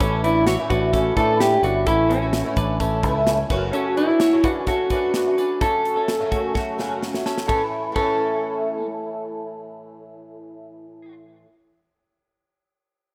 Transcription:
0.00 picked electric bass A1, twelve-string acoustic guitar E3 A3 C#4 E4, clean electric guitar C#4 A4, kick, closed hi-hat
0.24 clean electric guitar D4 E4 B4, closed hi-hat
0.35 twelve-string acoustic guitar A3 C#4 E4
0.47 clean electric guitar E4 F#4 C#5, snare, closed hi-hat
0.59 twelve-string acoustic guitar A2 E3 A3 C#4 E4
0.70 picked electric bass A1, clean electric guitar D4 F#4 B4, kick, closed hi-hat
0.93 twelve-string acoustic guitar E3 A3 C#4 E4, clean electric guitar C#4 A4, kick, snare, closed hi-hat
1.16 picked electric bass A2, twelve-string acoustic guitar A2 E3 A3 C#4 E4, clean electric guitar D4 A4 B4, kick, closed hi-hat
1.40 clean electric guitar G4, snare, closed hi-hat
1.51 twelve-string acoustic guitar A3 C#4 E4
1.63 picked electric bass G1, clean electric guitar D4 F#4 B4, closed hi-hat
1.86 picked electric bass A1, twelve-string acoustic guitar E3 A3 C#4 E4, clean electric guitar C#4 E4 A4, kick, closed hi-hat
2.09 clean electric guitar C#4, closed hi-hat
2.22 clean electric guitar A3 F#4, twelve-string acoustic guitar A3 C#4 E4
2.33 snare, closed hi-hat
2.45 twelve-string acoustic guitar A2 E3 A3 C#4 E4
2.56 picked electric bass A1, clean electric guitar D4 B4, kick, closed hi-hat
2.80 twelve-string acoustic guitar E3 A3 C#4 E4, clean electric guitar C#4 A4, kick, closed hi-hat
3.03 picked electric bass C#2, twelve-string acoustic guitar A2 E3 A3 C#4 E4, kick, closed hi-hat
3.27 snare, closed hi-hat
3.39 twelve-string acoustic guitar A3 C#4 E4
3.50 picked electric bass F#1, twelve-string acoustic guitar F#2 C#3 F#3 A3 C#4, clean electric guitar F#4 B4, kick, closed hi-hat
3.73 clean electric guitar C#4 A4, closed hi-hat
3.97 clean electric guitar D4 E4 B4, closed hi-hat
4.09 twelve-string acoustic guitar F#3 A3 C#4
4.20 clean electric guitar F#4 C#5, snare, closed hi-hat
4.32 twelve-string acoustic guitar F#2 C#3 F#3 A3 C#4
4.44 clean electric guitar D4 F#4 B4, kick, closed hi-hat
4.66 twelve-string acoustic guitar C#3 F#3 A3 C#4, clean electric guitar C#4 F#4 A4, kick, snare, closed hi-hat
4.90 twelve-string acoustic guitar F#2 F#3 A3 C#4, clean electric guitar D4 B4, kick, closed hi-hat
5.14 snare, closed hi-hat
5.26 twelve-string acoustic guitar F#3 A3 C#4
5.38 clean electric guitar D4 B4, closed hi-hat
5.61 twelve-string acoustic guitar C#3 F#3 A3 C#4, clean electric guitar C#4 A4, kick, closed hi-hat
5.85 closed hi-hat
5.96 twelve-string acoustic guitar F#3 A3 C#4, clean electric guitar C#4 A4
6.08 snare, closed hi-hat
6.20 twelve-string acoustic guitar F#2 C#3 F#3 A3 C#4
6.31 clean electric guitar A3 F#4, kick, closed hi-hat
6.54 twelve-string acoustic guitar C#3 F#3 A3 C#4, clean electric guitar A3 F#4, kick, snare
6.78 twelve-string acoustic guitar F#2 C#3 F#3 A3 C#4, snare
7.03 snare
7.13 twelve-string acoustic guitar F#3 A3 C#4, snare
7.26 clean electric guitar C#4 A4, snare
7.38 snare
7.45 twelve-string acoustic guitar A2 E3, clean electric guitar C#4 A4, kick
7.49 twelve-string acoustic guitar A3, ride
7.54 twelve-string acoustic guitar C#4 E4
7.92 twelve-string acoustic guitar A2 E3, clean electric guitar C#4 A4, kick, ride
7.98 twelve-string acoustic guitar A3 C#4
8.03 twelve-string acoustic guitar E4

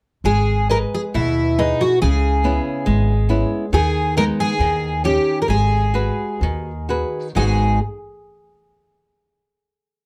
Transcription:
0.24 upright bass G#1, nylon-string guitar G#3, twelve-string acoustic guitar G#4
0.69 nylon-string guitar G#4 B4 D#5, twelve-string acoustic guitar A#4
0.95 twelve-string acoustic guitar G#4
1.14 upright bass D#2, nylon-string guitar B2, twelve-string acoustic guitar E4
1.58 nylon-string guitar D#4 G#4 B4, twelve-string acoustic guitar D#4
1.81 twelve-string acoustic guitar F#4
2.02 upright bass C#2, nylon-string guitar C#3, twelve-string acoustic guitar G#4
2.44 nylon-string guitar B3 C#4 E4
2.86 upright bass G#1, nylon-string guitar G#3
3.29 nylon-string guitar B3 C#4 E4
3.73 upright bass D#2, nylon-string guitar D#3, twelve-string acoustic guitar G#4
4.17 nylon-string guitar G#3 B3 D#4, twelve-string acoustic guitar A#4
4.40 twelve-string acoustic guitar G#4
4.59 upright bass D#2, nylon-string guitar D#3
5.04 nylon-string guitar C#4 D#4 G4, twelve-string acoustic guitar G4
5.42 twelve-string acoustic guitar A#4
5.48 upright bass G#1, nylon-string guitar G#3, twelve-string acoustic guitar G#4
5.94 nylon-string guitar F#4 G#4 B4
6.41 upright bass D#2, nylon-string guitar D#3
6.89 nylon-string guitar F#4 G#4 B4
7.35 upright bass G#1, nylon-string guitar G#2 D#3 G#3 B3 D#4 F#4, twelve-string acoustic guitar G#4

